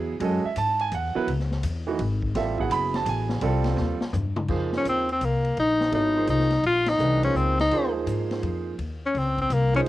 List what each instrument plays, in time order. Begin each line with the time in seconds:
Already playing: upright bass E2, grand piano F#3 B3 E4 G#4
0.20 upright bass F#2, grand piano G#3 C#4 F#4 A4, ride
0.24 grand piano D#5
0.44 grand piano E5, muted upright bass stroke
0.56 upright bass G#2, grand piano A5, hi-hat pedal, ride
0.79 grand piano G#5, ride
0.92 upright bass E2, grand piano F#5, hi-hat pedal, ride
1.15 grand piano F#3 B3 E4 B4, muted upright bass stroke
1.27 upright bass C#2, ride
1.40 snare
1.51 snare
1.63 upright bass E2, hi-hat pedal, ride
1.87 grand piano E3 A3 D#4 F#4
1.99 upright bass G#1, ride
2.22 kick
2.35 upright bass A1, grand piano G3 C4 F4 A4 E5, snare, ride
2.58 grand piano F#3 B3 E4 G#4 F#5, kick
2.70 upright bass F#1, grand piano B5, hi-hat pedal, ride
2.94 grand piano A5, snare, ride
3.05 upright bass A1, grand piano G#5, hi-hat pedal, ride
3.29 snare
3.41 upright bass C2, grand piano G3 C4 F4 A4, ride
3.64 snare, ride
3.77 upright bass D#2, snare
4.01 muted upright bass stroke, snare
4.13 upright bass G2, floor tom, hi-hat pedal
4.36 mid tom
4.48 upright bass F2, grand piano F3 A#3 D#4 G#4 C5, kick, crash
4.72 snare
4.77 tenor saxophone C#4
4.84 upright bass D#2, hi-hat pedal, ride
4.89 tenor saxophone C4
5.09 tenor saxophone C4, ride
5.21 upright bass C2, hi-hat pedal, ride
5.25 tenor saxophone A#3
5.44 ride
5.57 upright bass A#1, tenor saxophone D#4, ride
5.81 snare
5.91 upright bass G#1, grand piano F#3 B3 E4 A4 C#5, tenor saxophone D#4, ride
6.16 grand piano F3 A#3 D#4 G#4 C5
6.27 upright bass C2, tenor saxophone D#4, hi-hat pedal, ride
6.39 snare
6.50 snare, ride
6.63 upright bass A#1, tenor saxophone F4, ride
6.86 tenor saxophone D#4, snare, ride
6.99 upright bass C2, grand piano E3 A3 D4 G4 B4, hi-hat pedal
7.23 grand piano F3 A#3 D#4 G#4 C5, tenor saxophone C#4, ride
7.35 upright bass C#2, tenor saxophone C4, hi-hat pedal
7.59 tenor saxophone D#4, snare, ride
7.71 upright bass D#2, grand piano F3 A#3 D#4 G#4 C5, ride
8.06 upright bass G#2, hi-hat pedal, ride
8.31 snare, ride
8.43 upright bass F2, ride
8.78 upright bass D#2, ride
9.06 tenor saxophone C#4
9.14 upright bass C#2, hi-hat pedal, ride
9.19 tenor saxophone C4
9.38 tenor saxophone C4, kick, ride
9.50 upright bass C2, tenor saxophone A#3, hi-hat pedal, ride
9.74 grand piano F3 A#3 D#4 G#4 C5, tenor saxophone C#4, ride